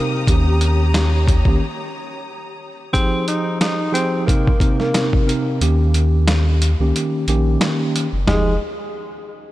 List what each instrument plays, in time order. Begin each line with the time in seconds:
Already playing: tine electric piano C3 C4 D#4 A#4, string section G4 C5 A#5 D#6
0.27 sub bass D#2, tine electric piano D#3 A#3 C#4 G4, string section C#5, kick, closed hi-hat
0.61 closed hi-hat
0.94 snare, closed hi-hat
1.28 kick, closed hi-hat
1.45 sub bass C#2, tine electric piano D#3 A#3 C#4 G4, kick
2.93 tine electric piano F3 D#4 G4 G#4, tenor saxophone C4, kick, closed hi-hat
3.28 tenor saxophone D#4, closed hi-hat
3.61 tenor saxophone D#4, snare, closed hi-hat
3.92 tine electric piano F3 D#4 G4 G#4, tenor saxophone C4, closed hi-hat
4.26 tine electric piano C3 C4 D#4 A#4, tenor saxophone A#3, kick, closed hi-hat
4.47 kick
4.60 tine electric piano C3 C4 D#4 A#4, kick, closed hi-hat
4.80 tenor saxophone A#3, snare
4.94 tine electric piano C3 C4 D#4 A#4, snare, closed hi-hat
5.13 kick
5.26 tine electric piano C3 C4 D#4 A#4, closed hi-hat
5.61 sub bass D#2, tine electric piano D#3 A#3 C#4 G4, closed hi-hat
5.94 closed hi-hat
6.28 snare, closed hi-hat
6.62 closed hi-hat
6.80 sub bass C#2, tine electric piano D#3 A#3 C#4 G4
6.96 closed hi-hat
7.27 sub bass A#1, tine electric piano D#3 A#3 C#4 G4, closed hi-hat
7.61 snare, closed hi-hat
7.96 closed hi-hat
8.13 sub bass F#1
8.27 sub bass F1, tine electric piano F3 D#4 G4 G#4, tenor saxophone G#3, snare, floor tom